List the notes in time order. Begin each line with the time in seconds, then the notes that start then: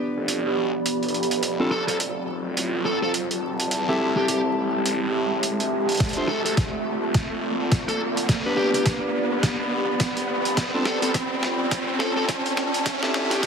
Already playing: B3 D4 G4 B4 D5, riser
0.17 F1 B5
0.28 closed hi-hat
0.46 B1
0.86 closed hi-hat
1.03 G1, closed hi-hat
1.08 closed hi-hat
1.14 closed hi-hat
1.23 closed hi-hat
1.31 closed hi-hat
1.43 F1 C4, closed hi-hat
1.60 C4 D4 F4 A4
1.71 A4
1.88 F2 A4, closed hi-hat
1.93 F4
2.00 F1, closed hi-hat
2.48 A5
2.57 A1, closed hi-hat
2.85 A4
3.02 F2 A4
3.14 closed hi-hat
3.31 F1, closed hi-hat
3.60 closed hi-hat
3.71 E2, closed hi-hat
3.88 C4 E4 G4 A4
4.00 D2
4.05 G4
4.17 C2 G4
4.28 G4, closed hi-hat
4.38 E5
4.57 A1
4.86 closed hi-hat
5.03 A1
5.43 closed hi-hat
5.60 D2, closed hi-hat
5.72 G1
5.89 closed hi-hat
5.92 closed hi-hat
5.95 closed hi-hat
5.97 D2, kick, snare, closed hi-hat
6.00 closed hi-hat
6.09 closed hi-hat
6.13 D4 F4, closed hi-hat
6.17 A4 C5
6.29 F4 A4
6.45 D2 A4, closed hi-hat
6.57 D2, kick, snare, closed hi-hat
7.03 D5
7.14 F1, kick, snare, closed hi-hat
7.60 D2
7.72 kick, snare, closed hi-hat
7.88 D2 A4, closed hi-hat
8.17 closed hi-hat
8.29 D2 B3, kick, snare, closed hi-hat
8.46 B3 D4 G4 B4
8.53 B1 G4
8.57 G4
8.74 G4 B5, closed hi-hat
8.86 kick, snare, closed hi-hat
9.31 F1
9.43 kick, snare, closed hi-hat
9.60 B1
10.00 kick, snare, closed hi-hat
10.17 G1, closed hi-hat
10.45 closed hi-hat
10.57 F1 C4, kick, snare, closed hi-hat
10.74 C4 D4 F4 A4
10.85 A4, snare
11.02 F2 F4 A4, closed hi-hat
11.14 F1, kick, snare, closed hi-hat
11.43 snare
11.48 A5
11.71 A1, kick, snare, closed hi-hat
11.99 A4, snare
12.17 F2 A4
12.29 kick, snare, closed hi-hat
12.46 F1, closed hi-hat
12.57 snare
12.74 closed hi-hat
12.86 E2, kick, snare, closed hi-hat
13.03 C4 E4 G4 A4, snare
13.14 D2, snare
13.31 A1 G4, snare, closed hi-hat
13.43 G4, kick, snare, closed hi-hat